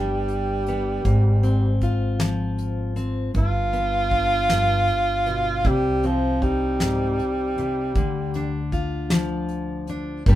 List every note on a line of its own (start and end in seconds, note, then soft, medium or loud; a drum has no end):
0.00 1.01 G1 medium
0.00 1.04 G2 medium
0.00 1.00 G3 medium
0.00 1.78 G3 medium
0.00 0.67 B3 soft
0.00 1.05 D4 soft
0.00 1.01 B4 medium
0.28 closed hi-hat soft
0.66 1.01 B3 medium
0.66 closed hi-hat medium
1.05 3.31 G#1 medium
1.05 3.30 G#2 medium
1.05 kick medium
1.05 closed hi-hat medium
1.43 2.95 C4 soft
1.43 closed hi-hat medium
1.81 3.31 F4 medium
1.81 kick soft
1.81 closed hi-hat soft
2.20 3.35 F3 medium
2.20 snare medium
2.20 closed hi-hat medium
2.58 closed hi-hat medium
2.96 3.30 C4 medium
2.96 closed hi-hat soft
3.34 5.61 G1 medium
3.34 4.50 G2 medium
3.34 5.69 F4 loud
3.34 kick medium
3.34 closed hi-hat medium
3.73 5.60 B3 soft
3.73 closed hi-hat soft
4.11 5.65 D4 medium
4.11 kick medium
4.11 closed hi-hat soft
4.50 4.89 G2 soft
4.50 snare medium
4.50 closed hi-hat medium
4.87 closed hi-hat soft
5.26 5.65 B2 medium
5.26 closed hi-hat soft
5.64 7.91 C2 medium
5.64 7.57 C3 medium
5.64 6.08 G3 medium
5.64 kick medium
5.64 closed hi-hat medium
6.03 6.44 F3 medium
6.03 7.91 C4 soft
6.03 closed hi-hat soft
6.42 8.69 G3 medium
6.42 7.91 D#4 soft
6.42 kick medium
6.42 closed hi-hat soft
6.80 7.19 G#2 medium
6.80 snare medium
6.80 closed hi-hat medium
7.19 closed hi-hat soft
7.58 7.96 C3 medium
7.58 closed hi-hat soft
7.95 10.22 D2 medium
7.95 10.22 D3 medium
7.95 kick medium
7.95 closed hi-hat medium
8.34 9.88 D4 medium
8.34 closed hi-hat medium
8.72 10.21 F4 medium
8.72 kick medium
8.72 closed hi-hat soft
9.10 10.26 F3 medium
9.10 snare medium
9.10 closed hi-hat medium
9.48 closed hi-hat soft
9.87 10.22 D4 medium
9.87 closed hi-hat medium
10.26 10.35 G1 medium
10.26 10.35 G2 medium
10.26 10.35 G3 medium
10.26 10.35 B3 medium
10.26 10.35 D4 medium
10.26 10.35 B4 medium
10.26 kick medium
10.26 closed hi-hat medium